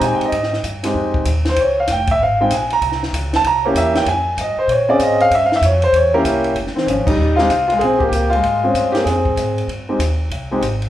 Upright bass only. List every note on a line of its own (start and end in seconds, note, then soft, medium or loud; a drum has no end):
0.01 0.19 A#2 medium
0.20 muted upright bass stroke soft
0.32 0.63 G#2 medium
0.64 0.94 G2 loud
0.95 1.25 F2 medium
1.26 1.56 D#2 medium
1.56 1.87 C#2 medium
1.87 2.18 F1 loud
2.19 2.50 G#1 medium
2.51 2.81 A#1 medium
2.81 3.12 C2 medium
3.13 3.43 C#2 loud
3.44 3.74 C2 medium
3.74 4.05 E2 medium
4.06 4.36 F2 medium
4.37 4.56 G2 loud
4.57 muted upright bass stroke soft
4.68 4.98 A#2 medium
4.99 5.30 G#2 medium
5.31 5.61 G2 medium
5.61 5.92 F2 loud
5.93 6.23 E2 medium
6.24 6.54 C2 medium
6.55 6.74 F1 medium
6.74 muted upright bass stroke soft
6.87 7.05 G#1 medium
7.17 7.48 D#2 medium
7.49 7.79 C2 medium
7.80 8.11 A#1 medium
8.12 8.42 C#2 loud
8.43 8.73 G#2 medium
8.74 9.05 G2 medium
9.05 9.36 F2 medium
9.36 9.67 G#2 loud
9.68 9.98 G2 medium
9.99 10.29 D#2 medium
10.30 10.61 C2 medium
10.61 10.89 G#1 medium